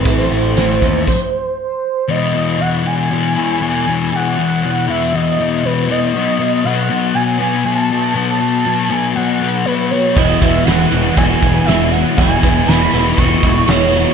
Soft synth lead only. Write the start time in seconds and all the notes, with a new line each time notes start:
0.08 B4
0.19 C5
1.60 C5
2.10 D#5
2.61 F#5
2.86 G#5
3.63 G#5
4.15 F#5
4.90 E5
5.15 D#5
5.65 B4
5.90 D#5
6.65 F#5
7.15 G#5
7.40 G#5
7.65 A5
8.16 A5
8.90 G#5
9.15 F#5
9.65 B4
9.90 C#5
10.16 D#5
10.40 E5
10.65 F#5
11.17 G#5
11.65 E5
11.92 F#5
12.17 G#5
12.67 B5
13.18 C#6
13.69 C#5